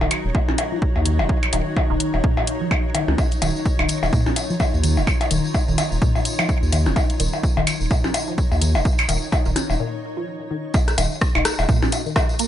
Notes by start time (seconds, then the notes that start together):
Already playing: F#3 D#4 F#4 C#5
0.01 D#1 D#3, percussion blips
0.11 closed hi-hat, percussion blips
0.25 D#1
0.35 A#2, kick, percussion blips
0.48 A#1, percussion blips
0.58 closed hi-hat, percussion blips
0.72 F3
0.82 kick
0.96 D#2, percussion blips
1.06 D#3, closed hi-hat
1.19 D#1, percussion blips
1.29 kick
1.43 closed hi-hat, percussion blips
1.53 D#1 D#3, closed hi-hat, percussion blips
1.77 kick, percussion blips
1.90 D#1 D#3
2.00 closed hi-hat
2.14 D#1, percussion blips
2.24 A#2, kick
2.37 A#1, percussion blips
2.47 closed hi-hat
2.61 F3
2.71 kick, percussion blips
2.95 D#3, closed hi-hat, percussion blips
3.08 C#2, percussion blips
3.18 F4, kick, tambourine, percussion blips
3.31 closed hi-hat, tambourine
3.42 D#1 D#3, closed hi-hat, tambourine, percussion blips
3.56 tambourine
3.65 kick, tambourine
3.79 D#1 D#3, percussion blips
3.89 closed hi-hat, tambourine
4.03 D#1, tambourine, percussion blips
4.13 A#2, kick, tambourine
4.26 A#1, tambourine, percussion blips
4.36 closed hi-hat, tambourine, percussion blips
4.50 F3, tambourine
4.60 kick, tambourine, percussion blips
4.74 D#2, tambourine
4.83 D#3, closed hi-hat, tambourine
4.97 D#1, tambourine, percussion blips
5.07 kick, tambourine, percussion blips
5.21 closed hi-hat, tambourine, percussion blips
5.31 D#1 D#3, closed hi-hat, tambourine
5.44 tambourine
5.54 kick, tambourine, percussion blips
5.68 D#1 D#3, tambourine
5.78 closed hi-hat, tambourine, percussion blips
5.92 D#1, tambourine
6.01 A#2, kick, tambourine
6.15 A#1, tambourine, percussion blips
6.25 closed hi-hat, tambourine
6.39 F3, tambourine, percussion blips
6.49 kick, tambourine
6.62 D#2, tambourine
6.72 D#3, closed hi-hat, tambourine, percussion blips
6.86 D#1, tambourine, percussion blips
6.96 kick, tambourine, percussion blips
7.09 closed hi-hat, tambourine
7.20 D#1 D#3, closed hi-hat, tambourine
7.33 tambourine, percussion blips
7.43 kick, tambourine
7.57 D#1 D#3, percussion blips
7.67 closed hi-hat, tambourine, percussion blips
7.81 D#1, tambourine
7.90 A#2, kick, tambourine, percussion blips
8.04 A#1, tambourine, percussion blips
8.14 closed hi-hat, tambourine, percussion blips
8.28 F3, tambourine
8.38 kick, tambourine
8.51 D#2, tambourine, percussion blips
8.61 D#3, closed hi-hat, tambourine
8.75 D#1, tambourine, percussion blips
8.85 kick, tambourine
8.98 closed hi-hat, tambourine, percussion blips
9.09 D#1 D#3, closed hi-hat, tambourine, percussion blips
9.22 tambourine
9.32 kick, tambourine, percussion blips
9.45 D#1 D#3, tambourine
9.56 closed hi-hat, tambourine, percussion blips
9.70 D#1, tambourine, percussion blips
9.80 A#2
10.17 F3
10.51 D#3
10.74 F#3 F#4, kick, tambourine, percussion blips
10.88 cross-stick, closed hi-hat, tambourine
10.98 D#1 D#3, closed hi-hat, tambourine, percussion blips
11.12 tambourine
11.21 kick, cross-stick, tambourine
11.35 D#1 D#4, percussion blips
11.45 cross-stick, closed hi-hat, tambourine
11.59 D#1, tambourine, percussion blips
11.69 A#2, kick, tambourine
11.82 A#1, tambourine, percussion blips
11.92 closed hi-hat, tambourine, percussion blips
12.06 D#3, tambourine
12.16 kick, cross-stick, tambourine, percussion blips
12.29 tambourine
12.39 A#3, closed hi-hat, tambourine